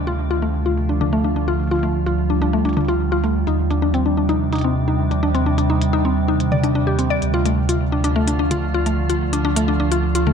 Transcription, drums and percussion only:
0.19 closed hi-hat medium
0.54 closed hi-hat soft
0.78 closed hi-hat medium
1.01 closed hi-hat medium
1.01 high tom medium
1.36 closed hi-hat soft
1.60 closed hi-hat soft
1.63 closed hi-hat soft
1.67 closed hi-hat soft
1.71 closed hi-hat soft
1.75 closed hi-hat soft
1.79 closed hi-hat soft
1.83 closed hi-hat medium
2.06 closed hi-hat medium
2.42 closed hi-hat soft
2.65 closed hi-hat medium
2.69 closed hi-hat medium
2.73 closed hi-hat soft
2.77 closed hi-hat soft
2.77 high tom medium
2.81 closed hi-hat soft
2.85 closed hi-hat soft
2.88 closed hi-hat medium
3.24 closed hi-hat soft
3.47 closed hi-hat soft
3.71 closed hi-hat medium
3.94 closed hi-hat medium
4.29 closed hi-hat soft
4.53 closed hi-hat medium
4.55 closed hi-hat medium
4.58 closed hi-hat soft
4.61 closed hi-hat soft
5.11 closed hi-hat soft
5.35 closed hi-hat soft
5.58 closed hi-hat medium
5.82 closed hi-hat medium
6.40 closed hi-hat medium
6.52 high tom medium
6.64 closed hi-hat medium
6.99 closed hi-hat soft
7.22 closed hi-hat soft
7.46 closed hi-hat medium
7.69 closed hi-hat medium
8.04 closed hi-hat soft
8.28 closed hi-hat medium
8.51 closed hi-hat medium
8.51 high tom medium
8.86 closed hi-hat soft
9.10 closed hi-hat soft
9.33 closed hi-hat medium
9.56 closed hi-hat medium
9.92 closed hi-hat soft
10.15 closed hi-hat medium
10.27 high tom medium

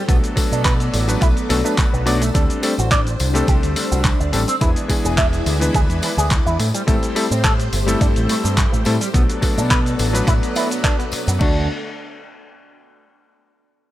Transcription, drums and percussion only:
0.09 kick loud
0.09 closed hi-hat medium
0.09 tambourine soft
0.09 shaker medium
0.24 closed hi-hat medium
0.24 shaker soft
0.37 kick medium
0.37 open hi-hat loud
0.37 tambourine loud
0.51 tambourine soft
0.51 shaker medium
0.65 kick loud
0.65 clap loud
0.65 closed hi-hat medium
0.65 tambourine soft
0.65 shaker medium
0.80 closed hi-hat soft
0.80 shaker soft
0.94 open hi-hat medium
0.94 tambourine loud
1.08 closed hi-hat soft
1.08 tambourine soft
1.08 shaker medium
1.22 kick loud
1.22 clap soft
1.22 closed hi-hat medium
1.22 tambourine soft
1.22 shaker medium
1.37 closed hi-hat soft
1.37 shaker soft
1.50 open hi-hat loud
1.50 tambourine medium
1.66 tambourine medium
1.66 shaker medium
1.78 kick loud
1.78 clap loud
1.78 closed hi-hat medium
1.78 tambourine soft
1.78 shaker medium
1.94 shaker soft
2.07 open hi-hat medium
2.07 tambourine loud
2.22 closed hi-hat soft
2.22 tambourine medium
2.22 shaker medium
2.34 kick loud
2.34 closed hi-hat medium
2.34 tambourine soft
2.34 shaker medium
2.50 closed hi-hat medium
2.50 shaker soft
2.63 open hi-hat loud
2.63 tambourine loud
2.78 tambourine medium
2.78 shaker medium
2.91 kick loud
2.91 clap loud
2.91 closed hi-hat medium
2.91 tambourine soft
2.91 shaker medium
3.07 closed hi-hat soft
3.07 shaker soft
3.20 open hi-hat medium
3.20 tambourine loud
3.35 closed hi-hat soft
3.35 tambourine soft
3.35 shaker medium
3.47 kick loud
3.47 closed hi-hat medium
3.47 tambourine soft
3.47 shaker medium
3.63 closed hi-hat soft
3.63 shaker soft
3.76 open hi-hat loud
3.76 tambourine medium
3.92 tambourine medium
3.92 shaker medium
4.05 kick loud
4.05 clap loud
4.05 closed hi-hat medium
4.05 tambourine soft
4.05 shaker medium
4.21 shaker soft
4.33 open hi-hat medium
4.33 tambourine loud
4.48 closed hi-hat medium
4.48 tambourine medium
4.48 shaker medium
4.61 kick loud
4.61 closed hi-hat medium
4.61 tambourine soft
4.61 shaker medium
4.76 closed hi-hat medium
4.76 shaker soft
4.89 kick medium
4.89 open hi-hat loud
4.89 tambourine medium
5.04 tambourine soft
5.04 shaker medium
5.18 kick loud
5.18 clap loud
5.18 closed hi-hat medium
5.18 tambourine soft
5.18 shaker medium
5.33 closed hi-hat soft
5.33 shaker soft
5.46 open hi-hat medium
5.46 tambourine medium
5.61 closed hi-hat soft
5.61 tambourine medium
5.61 shaker medium
5.75 kick loud
5.75 closed hi-hat medium
5.75 tambourine soft
5.75 shaker medium
5.90 closed hi-hat soft
5.90 shaker soft
6.02 open hi-hat loud
6.02 tambourine medium
6.18 tambourine medium
6.18 shaker medium
6.31 kick loud
6.31 clap loud
6.31 closed hi-hat medium
6.31 tambourine soft
6.31 shaker medium
6.47 shaker soft
6.60 open hi-hat medium
6.60 tambourine medium
6.74 closed hi-hat medium
6.74 tambourine medium
6.74 shaker medium
6.88 kick loud
6.88 closed hi-hat medium
6.88 tambourine soft
6.88 shaker medium
7.03 closed hi-hat medium
7.03 shaker soft
7.16 open hi-hat loud
7.16 tambourine medium
7.32 tambourine medium
7.32 shaker medium
7.44 kick loud
7.44 clap loud
7.44 closed hi-hat medium
7.44 tambourine soft
7.44 shaker medium
7.60 closed hi-hat soft
7.60 shaker soft
7.73 open hi-hat medium
7.73 tambourine medium
7.88 closed hi-hat soft
7.88 tambourine medium
7.88 shaker medium
8.01 kick loud
8.01 closed hi-hat medium
8.01 tambourine soft
8.01 shaker medium
8.16 closed hi-hat soft
8.16 shaker soft
8.29 open hi-hat loud
8.29 tambourine medium
8.44 tambourine soft
8.44 shaker medium
8.57 kick loud
8.57 clap loud
8.57 closed hi-hat medium
8.57 tambourine soft
8.57 shaker medium
8.74 shaker soft
8.85 open hi-hat medium
8.85 tambourine medium
9.01 closed hi-hat medium
9.01 tambourine soft
9.01 shaker medium
9.14 kick loud
9.14 closed hi-hat medium
9.14 tambourine soft
9.14 shaker medium
9.29 closed hi-hat medium
9.29 shaker soft
9.42 kick medium
9.42 open hi-hat loud
9.42 tambourine medium
9.57 tambourine medium
9.57 shaker medium
9.71 kick loud
9.71 clap loud
9.71 closed hi-hat medium
9.71 shaker medium
9.86 closed hi-hat soft
9.86 shaker soft
9.99 open hi-hat medium
9.99 tambourine medium
10.14 closed hi-hat soft
10.14 tambourine soft
10.14 shaker medium
10.28 kick loud
10.28 clap soft
10.28 closed hi-hat medium
10.28 tambourine soft
10.28 shaker medium
10.43 closed hi-hat soft
10.43 shaker soft
10.56 open hi-hat loud
10.56 tambourine medium
10.71 closed hi-hat soft
10.71 tambourine soft
10.71 shaker medium
10.84 kick loud
10.84 clap loud
10.84 closed hi-hat medium
10.84 tambourine soft
10.84 shaker medium
11.00 closed hi-hat soft
11.00 shaker soft
11.12 open hi-hat medium
11.12 tambourine loud
11.27 closed hi-hat medium
11.27 tambourine medium
11.27 shaker medium
11.41 kick loud
11.41 crash medium

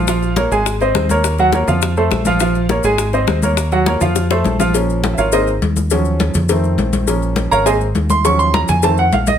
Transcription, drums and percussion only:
0.07 high bongo medium
0.07 high conga soft
0.07 maracas loud
0.22 high bongo soft
0.22 high conga soft
0.22 maracas soft
0.36 high bongo medium
0.36 high conga loud
0.36 maracas soft
0.51 high bongo soft
0.51 high conga soft
0.51 maracas medium
0.66 high bongo medium
0.66 high conga soft
0.66 maracas medium
0.80 high bongo soft
0.80 high conga soft
0.80 maracas soft
0.95 high bongo medium
0.95 low bongo medium
0.95 high conga medium
0.95 maracas soft
1.09 high conga medium
1.09 maracas medium
1.24 high bongo medium
1.24 maracas medium
1.38 high bongo soft
1.38 high conga soft
1.38 maracas soft
1.52 high bongo medium
1.52 high conga medium
1.52 maracas soft
1.68 high bongo soft
1.68 high conga soft
1.68 low conga medium
1.68 maracas medium
1.82 high bongo medium
1.82 high conga soft
1.82 maracas medium
1.96 high conga soft
1.96 maracas soft
2.11 high bongo medium
2.11 low bongo medium
2.11 high conga medium
2.11 maracas soft
2.25 high bongo soft
2.25 high conga medium
2.25 maracas medium
2.40 high bongo medium
2.40 maracas medium
2.55 high bongo soft
2.55 high conga soft
2.55 maracas soft
2.69 high bongo medium
2.69 high conga medium
2.69 maracas soft
2.83 high bongo soft
2.83 high conga soft
2.83 maracas medium
2.98 high bongo medium
2.98 high conga soft
2.98 maracas medium
3.13 high bongo soft
3.13 high conga soft
3.13 maracas soft
3.27 high bongo medium
3.27 low bongo medium
3.27 high conga medium
3.27 maracas soft
3.42 high conga medium
3.42 maracas medium
3.57 high bongo medium
3.57 high conga soft
3.57 maracas medium
3.71 high bongo soft
3.71 high conga soft
3.71 maracas soft
3.86 high bongo medium
3.86 high conga loud
3.86 maracas soft
4.01 high bongo soft
4.01 high conga soft
4.01 low conga medium
4.01 maracas medium
4.16 high bongo medium
4.16 high conga soft
4.16 maracas medium
4.30 high bongo medium
4.30 high conga soft
4.30 maracas soft
4.44 low bongo medium
4.44 high conga medium
4.44 maracas soft
4.59 low bongo medium
4.59 high conga medium
4.59 maracas medium
4.74 cowbell loud
4.74 high conga soft
4.74 maracas medium
4.89 high conga soft
4.89 maracas soft
5.04 cowbell medium
5.04 high conga loud
5.04 maracas soft
5.18 high conga soft
5.18 maracas medium
5.32 cowbell loud
5.32 high conga soft
5.32 maracas medium
5.47 high conga soft
5.47 maracas soft
5.62 cowbell medium
5.62 high conga medium
5.62 maracas soft
5.76 high conga medium
5.76 maracas medium
5.90 cowbell loud
5.90 high conga soft
5.90 maracas medium
6.05 high conga soft
6.05 maracas soft
6.20 cowbell medium
6.20 high conga medium
6.20 maracas soft
6.34 cowbell medium
6.34 high conga soft
6.34 low conga medium
6.34 maracas medium
6.49 cowbell loud
6.49 high conga soft
6.49 maracas medium
6.64 high conga soft
6.64 maracas soft
6.78 cowbell medium
6.78 high conga medium
6.78 maracas soft
6.93 cowbell medium
6.93 high conga medium
6.93 maracas medium
7.07 cowbell loud
7.07 high conga soft
7.07 maracas medium
7.22 high conga soft
7.22 maracas soft
7.36 cowbell medium
7.36 high conga medium
7.36 maracas soft
7.51 high conga soft
7.51 maracas medium
7.66 cowbell loud
7.66 high conga soft
7.66 maracas medium
7.81 high conga soft
7.81 maracas soft
7.95 cowbell medium
7.95 high conga medium
7.95 maracas soft
8.10 high conga medium
8.10 maracas medium
8.24 cowbell loud
8.24 high conga soft
8.24 maracas medium
8.39 high conga soft
8.39 maracas soft
8.54 cowbell medium
8.54 high conga loud
8.54 maracas soft
8.68 cowbell medium
8.68 high conga soft
8.68 low conga medium
8.68 maracas medium
8.83 cowbell loud
8.83 high conga soft
8.83 maracas medium
8.97 high conga soft
8.97 maracas soft
9.12 cowbell medium
9.12 high conga medium
9.12 maracas soft
9.27 cowbell medium
9.27 high conga medium
9.27 maracas medium

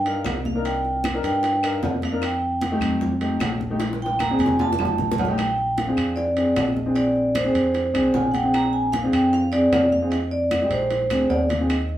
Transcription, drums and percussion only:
0.05 high bongo soft
0.05 high conga soft
0.05 high timbale medium
0.25 high bongo medium
0.25 low bongo medium
0.25 high conga medium
0.25 high timbale medium
0.25 low timbale medium
0.25 claves medium
0.45 high bongo soft
0.45 high conga medium
0.65 high bongo medium
0.65 high conga soft
0.65 high timbale medium
0.85 high bongo soft
0.85 high conga soft
1.04 high bongo medium
1.04 high conga loud
1.04 high timbale medium
1.04 low timbale medium
1.04 claves medium
1.24 high bongo soft
1.24 high conga soft
1.24 high timbale medium
1.43 high bongo medium
1.43 high conga soft
1.43 high timbale medium
1.63 high conga soft
1.63 high timbale medium
1.63 claves medium
1.83 high bongo medium
1.83 low bongo medium
1.83 high conga medium
1.83 low timbale medium
2.02 high bongo soft
2.02 high conga medium
2.02 high timbale medium
2.22 high bongo medium
2.22 high conga soft
2.22 high timbale medium
2.22 claves medium
2.42 high conga soft
2.61 high bongo medium
2.61 high conga medium
2.61 high timbale medium
2.61 low timbale medium
2.81 high bongo soft
2.81 high conga soft
2.81 low conga medium
2.81 high timbale medium
2.81 claves medium
3.01 high bongo medium
3.01 high conga soft
3.01 low conga medium
3.21 high bongo soft
3.21 high conga soft
3.21 high timbale medium
3.40 high bongo medium
3.40 low bongo medium
3.40 high conga medium
3.40 high timbale loud
3.40 low timbale medium
3.40 claves medium
3.60 high bongo soft
3.60 high conga medium
3.80 high bongo loud
3.80 high timbale medium
3.93 high bongo loud
4.00 high conga soft
4.06 high bongo loud
4.19 high bongo loud
4.19 high conga loud
4.19 high timbale medium
4.19 low timbale medium
4.19 claves medium
4.39 high conga medium
4.39 high timbale medium
4.46 low bongo medium
4.59 high conga loud
4.59 high timbale medium
4.72 low bongo medium
4.79 low conga medium
4.79 high timbale medium
4.79 claves medium
4.85 low bongo medium
4.98 low bongo medium
4.98 low conga medium
5.12 low bongo loud
5.18 low conga loud
5.18 low timbale medium
5.25 low bongo medium
5.38 high bongo medium
5.38 high conga soft
5.38 high timbale medium
5.38 claves medium
5.58 high conga soft
5.78 high bongo medium
5.78 high conga medium
5.78 high timbale medium
5.78 low timbale medium
5.97 high conga soft
5.97 high timbale medium
5.97 claves medium
6.17 high bongo medium
6.17 high conga soft
6.37 high bongo soft
6.37 high conga soft
6.37 high timbale medium
6.56 high bongo medium
6.56 low bongo medium
6.56 high conga medium
6.56 high timbale medium
6.56 low timbale medium
6.56 claves medium
6.76 high bongo soft
6.76 high conga medium
6.96 high bongo medium
6.96 high conga soft
6.96 high timbale medium
7.15 high bongo soft
7.15 high conga soft
7.35 high bongo medium
7.35 high conga medium
7.35 high timbale medium
7.35 low timbale medium
7.35 claves medium
7.54 high bongo soft
7.54 high conga soft
7.54 high timbale medium
7.74 high bongo medium
7.74 high conga soft
7.74 high timbale medium
7.95 high conga soft
7.95 high timbale medium
7.95 claves medium
8.14 high bongo medium
8.14 low bongo medium
8.14 high conga medium
8.14 low timbale medium
8.34 high bongo soft
8.34 high conga medium
8.34 high timbale medium
8.54 high bongo medium
8.54 high conga soft
8.54 high timbale medium
8.54 claves medium
8.74 high conga soft
8.93 high bongo medium
8.93 high conga medium
8.93 high timbale medium
8.93 low timbale medium
9.13 high bongo soft
9.13 high conga soft
9.13 high timbale medium
9.13 claves medium
9.33 high bongo medium
9.33 high conga soft
9.53 high bongo soft
9.53 high conga soft
9.53 high timbale medium
9.73 high bongo medium
9.73 low bongo medium
9.73 high conga medium
9.73 high timbale loud
9.73 low timbale medium
9.73 claves medium
9.92 high bongo soft
9.92 high conga medium
10.12 high bongo medium
10.12 high conga soft
10.12 high timbale medium
10.32 high bongo soft
10.32 high conga soft
10.51 high bongo medium
10.51 high conga medium
10.51 high timbale medium
10.51 low timbale medium
10.51 claves medium
10.70 high bongo soft
10.70 high conga soft
10.70 high timbale medium
10.90 high bongo medium
10.90 high conga soft
10.90 high timbale medium
11.10 low bongo medium
11.10 high conga soft
11.10 high timbale medium
11.10 claves medium
11.30 high conga medium
11.30 low timbale medium
11.50 low bongo medium
11.50 high conga medium
11.50 high timbale medium
11.69 high bongo medium
11.69 high conga soft
11.69 high timbale medium
11.69 claves medium
11.89 high conga soft

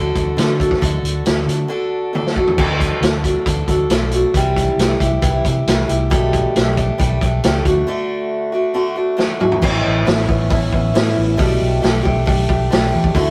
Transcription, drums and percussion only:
0.15 kick medium
0.15 closed hi-hat medium
0.38 snare loud
0.38 closed hi-hat medium
0.60 kick medium
0.60 closed hi-hat medium
0.71 kick medium
0.71 snare soft
0.82 kick medium
0.82 closed hi-hat medium
1.05 closed hi-hat medium
1.26 snare loud
1.26 closed hi-hat medium
1.49 closed hi-hat medium
2.15 high tom soft
2.27 snare medium
2.36 kick medium
2.47 floor tom medium
2.58 kick loud
2.58 crash loud
2.80 kick medium
2.80 closed hi-hat medium
3.02 snare loud
3.02 closed hi-hat medium
3.24 kick medium
3.24 closed hi-hat medium
3.46 kick loud
3.46 closed hi-hat medium
3.68 kick medium
3.68 closed hi-hat medium
3.90 snare loud
3.90 closed hi-hat medium
4.11 closed hi-hat medium
4.34 kick loud
4.34 closed hi-hat medium
4.57 kick medium
4.57 closed hi-hat medium
4.79 snare loud
4.79 closed hi-hat medium
5.00 kick medium
5.00 closed hi-hat medium
5.22 kick loud
5.22 closed hi-hat medium
5.45 kick medium
5.45 closed hi-hat medium
5.67 snare loud
5.67 closed hi-hat medium
5.89 closed hi-hat medium
6.11 kick loud
6.11 closed hi-hat medium
6.33 kick medium
6.33 closed hi-hat medium
6.56 snare loud
6.56 closed hi-hat medium
6.77 kick medium
6.77 closed hi-hat medium
7.00 kick loud
7.00 closed hi-hat medium
7.21 kick medium
7.21 closed hi-hat medium
7.43 snare loud
7.43 closed hi-hat medium
7.65 kick medium
7.65 closed hi-hat medium
9.19 snare medium
9.41 mid tom medium
9.52 floor tom medium
9.62 kick loud
9.62 crash loud
10.07 snare loud
10.07 open hi-hat medium
10.29 kick medium
10.50 kick loud
10.50 open hi-hat medium
10.73 kick medium
10.95 snare loud
10.95 open hi-hat medium
11.39 kick loud
11.39 open hi-hat medium
11.83 snare loud
11.83 open hi-hat medium
12.06 kick medium
12.27 kick loud
12.27 open hi-hat medium
12.49 kick medium
12.72 snare loud
12.72 open hi-hat medium
13.04 kick medium
13.15 kick loud
13.15 open hi-hat medium

